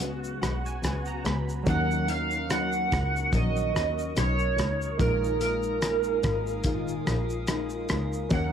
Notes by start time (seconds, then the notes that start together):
Already playing: C#2 F#3 B3 C#4 F#4 G#4
0.00 C#3 G#3 B3 F#4, closed hi-hat, shaker
0.24 shaker
0.41 B1 G#3 B3 F#4 F#5, cross-stick, closed hi-hat, shaker
0.66 G#5, shaker
0.82 C#2 C#3 G#3 B3 F#4 G#5, cross-stick, closed hi-hat, shaker
1.06 A#5, shaker
1.24 C#2 G#3 B3 F#4 B5, cross-stick, closed hi-hat, shaker
1.49 shaker
1.63 D#2 D#3 F#3 A#3 C#4 F#4 A#4 C#6 D#6, kick, closed hi-hat, shaker
1.67 D#4 A4 A#4 F#5
1.75 A#4
1.91 shaker
2.07 C#4 D#4 A#4 F5, closed hi-hat, shaker
2.31 shaker
2.49 F#3 C#4 D#4 A#4 F#5, cross-stick, closed hi-hat, shaker
2.72 shaker
2.90 C#2 A#4, kick, cross-stick, closed hi-hat, shaker
3.16 shaker
3.32 A#1 D#3 F#3 C#4 D#4 A#4 D#5, kick, closed hi-hat, shaker
3.56 shaker
3.74 D#2 C#4 D#4 A#4, cross-stick, closed hi-hat, shaker
3.99 shaker
4.15 B1 F#3 C#4 D#4 A#4 C#5, cross-stick, closed hi-hat, shaker
4.39 shaker
4.56 C#2 C#4 D#4 A#4, cross-stick, closed hi-hat, shaker
4.82 shaker
4.97 A#1 A#2 D#3 G#3 A#3 D#4 F4 A#4 F5 G#5, kick, closed hi-hat, shaker
5.02 A#4
5.24 shaker
5.40 G#3 D#4 F4 A#4, closed hi-hat, shaker
5.63 shaker
5.81 G#3 D#4 F4 A#4, cross-stick, closed hi-hat, shaker
6.03 shaker
6.23 G#1 G#3 D#4 F4 A#4, kick, cross-stick, closed hi-hat, shaker
6.47 shaker
6.64 A#2 D#3 G#3 D#4 F4 A#4, kick, closed hi-hat, shaker
6.88 shaker
7.06 A#1 G#3 D#4 F4 A#4, cross-stick, closed hi-hat, shaker
7.30 shaker
7.47 G#3 D#4 F4 A#4, cross-stick, closed hi-hat, shaker
7.70 shaker
7.89 C#2 G#3 D#4 F4 A#4, cross-stick, closed hi-hat, shaker
8.13 shaker
8.29 D#2 D#3 F#3 A#3 C#4 F#4 A#4 C#5 A#5, kick, closed hi-hat, shaker
8.33 D#4 A#4 F#5